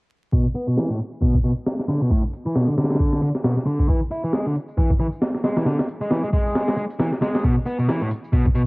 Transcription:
0.33 overdriven electric guitar B2, kick, closed hi-hat, tambourine
0.55 overdriven electric guitar B3, closed hi-hat, tambourine
0.68 overdriven electric guitar B2, tambourine
0.77 overdriven electric guitar E3, snare, closed hi-hat, tambourine
0.90 overdriven electric guitar A2, closed hi-hat
1.00 closed hi-hat, tambourine
1.13 tambourine
1.21 overdriven electric guitar B2, kick, closed hi-hat, tambourine
1.35 kick
1.44 overdriven electric guitar B2, closed hi-hat, tambourine
1.57 tambourine
1.66 snare, closed hi-hat, tambourine
1.79 snare
1.89 overdriven electric guitar D3, snare, closed hi-hat, tambourine
2.01 overdriven electric guitar B2, tambourine
2.11 overdriven electric guitar A2, kick, closed hi-hat, tambourine
2.24 closed hi-hat
2.33 closed hi-hat, tambourine
2.46 overdriven electric guitar E3, tambourine
2.55 overdriven electric guitar B2, snare, closed hi-hat, tambourine
2.68 overdriven electric guitar D3, closed hi-hat
2.78 overdriven electric guitar D3, snare, closed hi-hat, tambourine
2.84 snare, closed hi-hat
2.90 snare, closed hi-hat, tambourine
2.95 snare, closed hi-hat
3.00 kick, open hi-hat, tambourine
3.13 snare
3.22 overdriven electric guitar D3, closed hi-hat, tambourine
3.35 snare, tambourine
3.44 overdriven electric guitar B2, snare, closed hi-hat, tambourine
3.57 snare
3.66 overdriven electric guitar D3, closed hi-hat, tambourine
3.79 kick, tambourine
3.89 overdriven electric guitar E3, kick, closed hi-hat, tambourine
4.11 overdriven electric guitar E4, closed hi-hat, tambourine
4.24 overdriven electric guitar E3, tambourine
4.33 overdriven electric guitar G#3, snare, closed hi-hat, tambourine
4.46 overdriven electric guitar D3, closed hi-hat
4.55 closed hi-hat, tambourine
4.68 tambourine
4.78 overdriven electric guitar E3, kick, closed hi-hat, tambourine
4.90 kick
4.99 overdriven electric guitar E3, closed hi-hat, tambourine
5.12 tambourine
5.22 snare, closed hi-hat, tambourine
5.35 snare
5.44 overdriven electric guitar G#3, snare, closed hi-hat, tambourine
5.57 overdriven electric guitar E3, snare, closed hi-hat, tambourine
5.66 overdriven electric guitar D3, snare, closed hi-hat
5.79 snare, closed hi-hat
5.88 closed hi-hat, tambourine
6.01 overdriven electric guitar G#3, tambourine
6.11 overdriven electric guitar E3, snare, closed hi-hat, tambourine
6.23 overdriven electric guitar G#3, closed hi-hat
6.33 overdriven electric guitar G#3, kick, closed hi-hat, tambourine
6.46 tambourine
6.55 snare, closed hi-hat, tambourine
6.68 snare, closed hi-hat
6.77 overdriven electric guitar G#3, tambourine
6.90 closed hi-hat, tambourine
6.99 overdriven electric guitar E3, snare, closed hi-hat
7.13 snare
7.22 overdriven electric guitar G#3, snare, closed hi-hat, tambourine
7.35 snare, closed hi-hat, tambourine
7.44 overdriven electric guitar B2, kick, closed hi-hat, tambourine
7.66 overdriven electric guitar B3, closed hi-hat, tambourine
7.79 overdriven electric guitar B2, tambourine
7.88 overdriven electric guitar E3, snare, closed hi-hat, tambourine
8.01 overdriven electric guitar A2, closed hi-hat
8.11 closed hi-hat, tambourine
8.24 tambourine
8.33 overdriven electric guitar B2, kick, closed hi-hat, tambourine
8.46 kick
8.55 overdriven electric guitar B2, closed hi-hat, tambourine

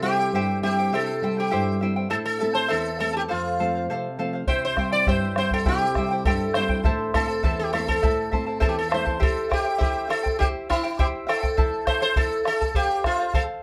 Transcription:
Already playing: nylon-string guitar C3
0.02 nylon-string guitar G3 C4 E4, charango E4 C5 E5 G5, sitar G4
0.19 charango E4 C5 G5
0.32 nylon-string guitar G2, charango E4 G4 C5 E5 G5
0.62 nylon-string guitar G3 C4 E4, charango E4 C5 E5 G5, sitar G4
0.79 charango E4 C5 G5
0.92 nylon-string guitar C3, charango E4 G4 C5 E5 G5, sitar A4
1.22 nylon-string guitar G3 C4 E4, charango E4 C5 E5 G5
1.37 charango E4 C5 G5, sitar G4
1.51 nylon-string guitar G2, charango E4 G4 C5 E5 G5
1.81 nylon-string guitar G3 C4 E4, charango E4 C5 E5 G5
1.96 charango E4 C5 G5
2.10 nylon-string guitar A2, charango E4 A4 C5 E5 A5, sitar A4
2.25 sitar A4
2.40 nylon-string guitar A3 C4 E4, charango E4 A4 E5 A5
2.54 charango E4 A4 A5, sitar C5
2.68 nylon-string guitar E2, charango E4 A4 C5 E5 A5, sitar A4
2.99 nylon-string guitar A3 C4 E4, charango E4 A4 E5 A5, sitar A4
3.13 charango E4 A4 A5, sitar G4
3.28 nylon-string guitar F2, sitar F4, charango A4 C5 F5
3.60 nylon-string guitar F3 A3 C4, charango A4 C5 F5
3.75 charango C5 F5
3.89 nylon-string guitar C3, charango A4 C5 F5
4.18 nylon-string guitar F3 A3 C4, charango A4 C5 F5
4.33 charango C5 F5
4.47 nylon-string guitar C3, charango E4 G4 C5 E5 G5, sitar C5, bombo low
4.65 sitar C5
4.77 nylon-string guitar G3 C4 E4, charango E4 C5 E5 G5, bombo rim, bombo low
4.92 charango E4 C5 G5, sitar D5
5.07 nylon-string guitar G2, charango E4 G4 C5 E5 G5, sitar C5, bombo low
5.36 nylon-string guitar G3 C4 E4, charango E4 C5 E5 G5, sitar C5, bombo rim
5.51 charango E4 C5 G5, sitar A4, bombo low
5.65 nylon-string guitar C3, charango E4 G4 C5 E5 G5, sitar G4, bombo low
5.95 nylon-string guitar G3 C4 E4, charango E4 C5 E5 G5, bombo rim, bombo low
6.11 charango E4 C5 G5
6.25 nylon-string guitar G2, charango E4 G4 C5 E5 G5, sitar A4, bombo low
6.54 nylon-string guitar G3 C4 E4, charango E4 C5 E5 G5, sitar C5, bombo rim
6.69 charango E4 C5 G5, bombo low
6.84 nylon-string guitar A2, charango E4 A4 C5 E5 A5, bombo low
7.14 nylon-string guitar A3 C4 E4, charango E4 C5 E5 A5, sitar A4, bombo rim, bombo low
7.28 charango E4 C5 A5
7.43 nylon-string guitar E2, charango E4 A4 C5 E5 A5, bombo low
7.59 sitar G4
7.73 nylon-string guitar A3 C4 E4, charango E4 C5 E5 A5, sitar A4, bombo rim
7.88 charango E4 C5 A5, sitar A4, bombo low
8.02 nylon-string guitar A2, charango E4 A4 C5 E5 A5, bombo low
8.31 nylon-string guitar A3 C4 E4, charango E4 C5 E5 A5, bombo low
8.46 charango E4 C5 A5
8.60 nylon-string guitar E2, charango E4 A4 C5 E5 A5, sitar A4, bombo low
8.69 sitar G4
8.79 sitar A4
8.90 nylon-string guitar A3 C4, charango E4 C5 E5 A5, bombo rim
8.94 nylon-string guitar E4, sitar C5
9.05 charango E4 C5 A5, bombo low
9.20 charango E4 G4 C5 E5 G5, sitar A4, bombo low
9.49 charango E4 C5 E5 G5, sitar G4, bombo rim, bombo low
9.64 charango E4 C5 G5
9.78 charango E4 G4 C5 E5 G5, sitar G4, bombo low
10.08 charango E4 C5 E5 G5, sitar A4, bombo rim
10.23 charango E4 C5 G5, bombo low
10.39 charango E4 G4 C5 E5 G5, sitar G4, bombo low
10.69 sitar E4, charango E4 C5 E5 G5, bombo rim, bombo low
10.83 charango E4 C5 G5
10.99 charango E4 G4 C5 E5 G5, sitar G4, bombo low
11.27 charango E4 C5 E5 G5, sitar A4, bombo rim
11.43 charango E4 C5 G5, bombo low
11.57 charango E4 A4 C5 E5 A5, bombo low
11.87 charango E4 A4 E5 A5, sitar C5, bombo rim, bombo low
12.01 charango E4 A4 A5, sitar C5
12.16 charango E4 A4 C5 E5 A5, sitar A4, bombo low
12.45 charango E4 A4 E5 A5, sitar A4, bombo rim
12.61 charango E4 A4 A5, bombo low
12.75 sitar G4, charango A4 C5 F5, bombo low
13.04 sitar F4, charango A4 C5 F5, bombo rim, bombo low
13.20 charango C5 F5
13.34 charango A4 C5 F5, sitar A4, bombo low

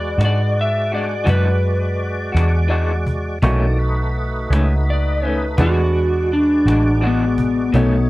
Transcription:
Already playing: fingered electric bass E2, tonewheel organ G#3 F#4 D5, upright piano F#4 G#4 B4 D5, electric slide guitar D5
0.18 fingered electric bass G#2, clean electric guitar G#3 D4 F#4, cajon slap
0.25 electric slide guitar D5
0.54 cajon slap
0.61 electric slide guitar E5
0.91 clean electric guitar G#3 D4 F#4, electric slide guitar D5, cajon slap
1.24 fingered electric bass F#2, clean electric guitar E3 G#3 D4 F#4, cajon bass
1.29 electric slide guitar B4
1.63 cajon slap
1.99 cajon slap
2.32 fingered electric bass E2, clean electric guitar G#3 D4 F#4
2.37 cajon slap
2.68 clean electric guitar E3 G#3 D4 F#4, cajon slap
3.07 cajon bass
3.42 fingered electric bass B1, clean electric guitar B2 D#3 A3 C#4, tonewheel organ E3 A#3 D5, upright piano D#4 F#4 A4 C#6, cajon bass
3.79 tonewheel organ A3 D#4 B4, cajon slap
4.14 cajon slap
4.50 fingered electric bass C#2, clean electric guitar D#3 A3 C#4, cajon slap
4.86 cajon slap
4.90 electric slide guitar D5
5.22 clean electric guitar D#3 A3 C#4, cajon slap
5.26 electric slide guitar B4
5.58 fingered electric bass E2, clean electric guitar E3 G#3 D4 F#4, tonewheel organ A3 F#4 D5, upright piano D4 F#4 G#4 B4, electric slide guitar F#4, cajon bass
5.93 tonewheel organ G#3 F#4 D5, cajon slap
6.31 electric slide guitar D4, cajon slap
6.66 fingered electric bass A1, clean electric guitar G#3 D4 F#4, cajon slap
7.01 clean electric guitar E3 G#3 D4 F#4, cajon slap
7.07 electric slide guitar B3
7.38 cajon bass
7.73 fingered electric bass B1, clean electric guitar B2 D#3 A3 C#4, tonewheel organ A3 D#4 C#5, electric slide guitar B3, upright piano D#4 F#4 A4 C#5, cajon bass

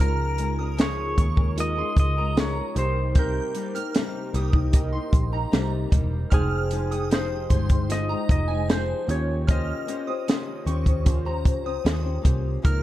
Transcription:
0.00 picked electric bass C#2, nylon-string guitar C#3 F3 G#3 C#4 G#4 A#4, synth keys D#4 F4 G#4 A#4, electric slide guitar A#4, synth bell F6
0.38 nylon-string guitar G#3 C#4 G#4 A#4, closed hi-hat
0.58 nylon-string guitar G#3 C#4 G#4 A#4, synth bell D#6
0.77 nylon-string guitar C#3 F3 G#3 C#4 G#4 A#4, snare, closed hi-hat
0.81 electric slide guitar C#5
1.17 picked electric bass D#2, nylon-string guitar G#3 C#4 G#4 A#4, synth bell C#6, kick, closed hi-hat
1.36 nylon-string guitar G#3 C#4 G#4 A#4, kick
1.56 nylon-string guitar G#3 C#4 G#4 A#4, synth keys D#4 F4 G#4 A#4, closed hi-hat
1.60 electric slide guitar D#5
1.75 nylon-string guitar G#3 C#4 G#4 A#4, synth bell C6
1.97 picked electric bass C#2, electric slide guitar D#5, kick, closed hi-hat
2.17 nylon-string guitar G#3 C#4 G#4 A#4, synth bell A#5
2.36 nylon-string guitar C#3 F3 G#3 C#4 G#4 A#4, snare, closed hi-hat
2.40 electric slide guitar C#5
2.56 nylon-string guitar G#3 C#4 G#4 A#4
2.75 picked electric bass C2, nylon-string guitar G3 A#3 D#4 G4, synth keys D#4 G4 A#4 C5, electric slide guitar C5, closed hi-hat
3.15 nylon-string guitar C3 G3 A#3 D#4 G4, synth bell G6, kick, closed hi-hat
3.19 electric slide guitar A#4
3.54 nylon-string guitar G3 A#3 D#4 G4, closed hi-hat
3.74 nylon-string guitar A#3 D#4 G4, synth bell F6, closed hi-hat
3.94 nylon-string guitar C3 G3 A#3 D#4 G4, snare, closed hi-hat
4.33 picked electric bass C2, nylon-string guitar G3 A#3 D#4 G4, synth bell D#6, closed hi-hat
4.52 nylon-string guitar A#3 D#4 G4, kick
4.72 nylon-string guitar G3 A#3 D#4 G4, synth keys D#4 G4 A#4 D#5, kick, closed hi-hat
4.92 nylon-string guitar A#3 D#4 G4, synth bell C6
5.13 picked electric bass A#1, kick, closed hi-hat
5.32 nylon-string guitar A#3 D#4 G4, synth bell A#5
5.51 picked electric bass C2, nylon-string guitar C3 G3 A#3 D#4 G4, snare, closed hi-hat
5.90 picked electric bass E1, nylon-string guitar G3 A#3 D#4 G4, kick, closed hi-hat
6.30 picked electric bass F1, nylon-string guitar F3 G#3 D#4, synth keys D#4 G#4 C5 G5, electric slide guitar G#4, synth bell F6, kick, closed hi-hat
6.71 nylon-string guitar F3 G#3 D#4 G4, closed hi-hat
6.91 nylon-string guitar G#3 D#4 G4, synth bell D#6, closed hi-hat
7.10 nylon-string guitar F3 G#3 D#4 G4, electric slide guitar C5, snare, closed hi-hat
7.50 picked electric bass G1, nylon-string guitar F3 G#3 D#4 G4, synth bell C6, kick, closed hi-hat
7.69 nylon-string guitar G#3 D#4 G4, kick, closed hi-hat
7.89 nylon-string guitar F3 G#3 D#4 G4, synth keys D#4 F4 G#4 C5, electric slide guitar D#5, snare, closed hi-hat
8.08 nylon-string guitar G#3 D#4 G4, synth bell A#5
8.29 picked electric bass F1, electric slide guitar D#5, kick, closed hi-hat
8.48 nylon-string guitar G#3 D#4 G4, synth bell G#5
8.68 nylon-string guitar F3 G#3 D#4 G4, electric slide guitar C5, snare, closed hi-hat
9.06 picked electric bass D#2, nylon-string guitar A#3 C#4 G4, synth keys C#4 F4 G4, closed hi-hat
9.11 synth keys C#5, electric slide guitar C#5
9.47 nylon-string guitar D#3 A#3 C#4 G4 C5, electric slide guitar D#5, synth bell F6, kick, closed hi-hat
9.87 nylon-string guitar A#3 C#4 G4 C5, closed hi-hat
10.07 nylon-string guitar C#4 G4 C5, synth bell D#6
10.27 nylon-string guitar D#3 A#3 C#4 G4 C5, snare, closed hi-hat
10.65 picked electric bass D#2, nylon-string guitar A#3 C#4 G4 C5, synth bell C#6, closed hi-hat
10.86 nylon-string guitar C#4 G4 C5, kick, closed hi-hat
11.05 nylon-string guitar A#3 C#4 G4 C5, synth keys C#4 F4 G4 C5, kick, closed hi-hat
11.25 nylon-string guitar C#4 G4 C5, synth bell A#5
11.45 picked electric bass C#2, kick, closed hi-hat
11.64 nylon-string guitar C#4 G4 C5, synth bell D#6
11.84 picked electric bass D#2, nylon-string guitar D#3 A#3 C#4 G4 C5, snare, closed hi-hat
12.02 nylon-string guitar C#4 G4 C5
12.22 picked electric bass C2, nylon-string guitar A#3 C#4 G4 C5, kick, closed hi-hat
12.62 picked electric bass C#2, nylon-string guitar C#3 F3 A#3 F4 G#4, synth keys A#3 D#4 F4, electric slide guitar A#4, synth bell F6, kick, closed hi-hat
12.66 synth keys G#4

